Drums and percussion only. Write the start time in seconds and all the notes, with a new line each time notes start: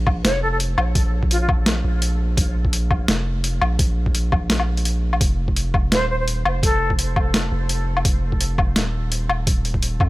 0.07 kick, low woodblock
0.25 snare, closed hi-hat
0.60 closed hi-hat
0.78 low woodblock
0.95 kick, closed hi-hat
1.23 kick
1.31 closed hi-hat
1.49 kick, low woodblock
1.66 snare, closed hi-hat
2.02 closed hi-hat
2.37 kick, closed hi-hat
2.65 kick
2.73 closed hi-hat
2.91 kick, low woodblock
3.08 snare, closed hi-hat
3.44 closed hi-hat
3.62 low woodblock
3.79 kick, closed hi-hat
4.06 kick
4.15 closed hi-hat
4.32 kick, low woodblock
4.50 snare, closed hi-hat
4.60 low woodblock
4.77 closed hi-hat
4.85 closed hi-hat
5.13 low woodblock
5.21 kick, closed hi-hat
5.48 kick
5.56 closed hi-hat
5.74 kick, low woodblock
5.92 snare, closed hi-hat
6.28 closed hi-hat
6.45 low woodblock
6.63 kick, closed hi-hat
6.90 kick
6.99 closed hi-hat
7.16 kick, low woodblock
7.34 snare, closed hi-hat
7.69 closed hi-hat
7.97 low woodblock
8.05 kick, closed hi-hat
8.32 kick
8.41 closed hi-hat
8.58 kick, low woodblock
8.76 snare, closed hi-hat
9.12 closed hi-hat
9.29 low woodblock
9.47 kick, closed hi-hat
9.65 closed hi-hat
9.74 kick
9.83 closed hi-hat
10.00 kick, low woodblock